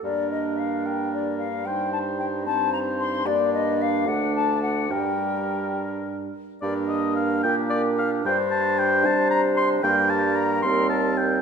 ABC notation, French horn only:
X:1
M:6/8
L:1/8
Q:3/8=74
K:Gm
V:1 name="French horn" clef=bass
B,6 | G,3 C3 | B,3 A,3 | G,4- G, z |
B,6 | G,6 | G,3 G,3 |]